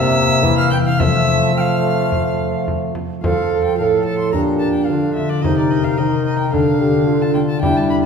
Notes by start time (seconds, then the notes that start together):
Already playing: C3 A#3 C4 A#4 C5 E5 E6
0.43 E3, frame drum
0.57 F5 F6
0.71 G5 G6, frame drum
0.85 F5 F6
0.96 F3 A3 C4 C5 E5
1.00 F3 E6, frame drum
1.51 A3 C4 C5
1.57 F5 G5 F6
2.12 frame drum
2.68 frame drum
2.95 frame drum
3.19 F3 A3 F4 C5
3.23 F3 A4 F5, frame drum
3.64 G5
3.78 A2 A4 A#4 F5
3.84 A4
4.06 A5
4.19 C6
4.30 A#2 A#3 D4 F4 D5 A#5
4.34 A#2 G4, frame drum
4.59 A5
4.73 G5
4.86 D3 D4 F4 F5
4.90 D3
5.14 E5, frame drum
5.29 D5
5.42 C3 D#4 A#4 C5 D#5, frame drum
5.58 D5
5.70 D#5
5.84 F5
5.98 D#3 D#4 D#5
6.26 D#5
6.39 G5
6.50 D3 A3 D4 A4 F5, frame drum
6.80 G4
7.07 F4
7.22 A5
7.34 G5, frame drum
7.49 A5
7.59 G3 B3 D4 E4 G4 G5, frame drum
7.65 D4
7.77 A5
7.90 B5